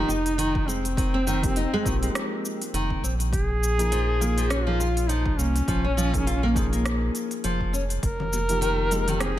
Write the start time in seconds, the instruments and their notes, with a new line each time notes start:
Already playing: felt piano F3 A#3 D#4 G4, duduk D#4, impact
0.08 sub bass F1, nylon-string guitar D#4, cabasa
0.26 open hi-hat, cabasa
0.38 nylon-string guitar D#3, open hi-hat, cabasa
0.55 kick
0.68 nylon-string guitar G#3, duduk C4, cabasa
0.85 open hi-hat, cabasa
0.97 nylon-string guitar D#3, kick, open hi-hat, cabasa
1.14 nylon-string guitar C4
1.27 nylon-string guitar D#3, cabasa
1.42 felt piano F3 A#3 D#4 G4, kick, open hi-hat, cabasa
1.56 nylon-string guitar D#4, open hi-hat, cabasa
1.74 nylon-string guitar G#3
1.83 sub bass A#1, nylon-string guitar D#3, felt piano F3 A#3 D#4, kick, open hi-hat, cabasa
1.87 felt piano G4
2.03 nylon-string guitar G#3, open hi-hat, cabasa
2.15 cross-stick, open hi-hat, cabasa
2.45 cabasa
2.62 open hi-hat, cabasa
2.73 sub bass F1, nylon-string guitar D#3, open hi-hat, cabasa
2.90 kick
3.03 sub bass A#1, nylon-string guitar C4, cabasa
3.20 open hi-hat, cabasa
3.33 duduk G#4, kick, open hi-hat, cabasa
3.63 cabasa
3.78 felt piano F3 A#3 D#4 G#4, open hi-hat, cabasa
3.92 nylon-string guitar F3, open hi-hat, cabasa
4.20 felt piano F3 A#3 D#4 G#4, nylon-string guitar A#3, open hi-hat, cabasa
4.38 nylon-string guitar F3, open hi-hat, cabasa
4.49 nylon-string guitar C#4, duduk F4, cross-stick, open hi-hat, cabasa
4.66 felt piano F3 A#3 D#4 G#4, nylon-string guitar F3
4.80 nylon-string guitar F4, cabasa
4.97 open hi-hat, cabasa
5.09 nylon-string guitar F3, duduk D#4, open hi-hat, cabasa
5.26 kick
5.38 sub bass C2, nylon-string guitar A#3, duduk C#4, cabasa
5.56 open hi-hat, cabasa
5.68 sub bass A#1, nylon-string guitar F3, kick, open hi-hat, cabasa
5.84 nylon-string guitar C#4
5.97 nylon-string guitar F3, cabasa
6.13 felt piano F3 A#3 D#4 G#4, kick, open hi-hat, cabasa
6.27 nylon-string guitar F4, open hi-hat, cabasa
6.43 nylon-string guitar A#3
6.54 felt piano F3 A#3 D#4 G#4, nylon-string guitar F3, kick, open hi-hat, cabasa
6.72 nylon-string guitar A#3, open hi-hat, cabasa
6.86 cross-stick, open hi-hat, cabasa
7.15 open hi-hat, cabasa
7.31 open hi-hat, cabasa
7.44 sub bass F1, nylon-string guitar F3, open hi-hat, cabasa
7.61 kick
7.73 nylon-string guitar C#4, cabasa
7.90 open hi-hat, cabasa
8.03 sub bass F1, duduk A#4, kick, open hi-hat, cabasa
8.20 low conga
8.33 muted conga, cabasa
8.49 felt piano F3 A#3 D#4 G4, open hi-hat, cabasa
8.61 nylon-string guitar D#3, open hi-hat, cabasa
8.91 felt piano F3 A#3 D#4 G4, nylon-string guitar G#3, open hi-hat, high conga, cabasa
9.08 nylon-string guitar D#3, open hi-hat, low conga, cabasa
9.20 nylon-string guitar C4, duduk G#4, cross-stick, open hi-hat, high conga, cabasa